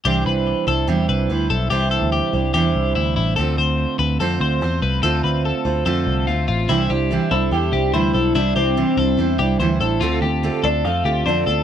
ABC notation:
X:1
M:4/4
L:1/16
Q:1/4=144
K:C
V:1 name="Clean electric guitar"
G2 B4 A2 G2 B4 A2 | G2 A2 G4 G4 E2 E2 | A2 c4 B2 A2 c4 B2 | A2 B2 A4 A4 F2 F2 |
E2 G4 A4 G2 c2 A2 | E2 G4 A4 G2 c2 A2 | F2 G4 A4 G2 c2 A2 |]
V:2 name="Clean electric guitar"
z16 | z16 | z16 | z16 |
z6 E2 G4 E4 | D2 C8 z6 | z6 D2 F4 D4 |]
V:3 name="Steel-string acoustic guitar"
[C,E,G,DEc]6 [G,DEc]2 [C,E,G,DEc]4 [G,DEc]4 | [C,E,G,DEc]6 [G,DEc]2 [C,E,G,DEc]8 | [D,A,CFc]8 [D,A,CFc]4 [A,CFc]4 | [D,A,CFc]6 [CFc]2 [D,A,CFc]4 [A,CFc]4 |
[C,E,G,DEc]2 [G,DEc]2 [C,E,G,DEc]2 [G,DEc]2 [G,DEc]2 [G,DEc]2 [C,E,G,DEc]2 [G,DEc]2 | [C,E,G,DEc]2 [G,DEc]2 [C,E,G,DEc]2 [G,DEc]2 [G,DEc]2 [G,DEc]2 [C,E,G,DEc]2 [G,DEc]2 | [D,A,CFA]2 [CFA]2 [D,A,CFA]2 [CFA]2 [A,CFA]2 [CFA]2 [D,A,CFA]2 [CFA]2 |]
V:4 name="Picked electric bass" clef=bass
C,,2 C,,3 z C,,2 E,,2 C,,2 D,,2 B,,,2 | C,,3 D,,2 z C,,2 E,,2 C,,2 D,,2 A,,,2 | D,,2 D,,3 z D,,2 F,,2 D,,2 E,,2 C,,2 | D,,2 D,,3 z D,,2 F,,2 C,,2 D,,2 A,,,2 |
C,,2 C,,3 z C,,2 E,,2 C,,2 D,,2 B,,,2 | C,,2 C,,3 z C,,2 E,,2 C,,2 D,,2 A,,,2 | D,,2 D,,3 z D,,2 F,,2 D,,2 F,,2 D,,2 |]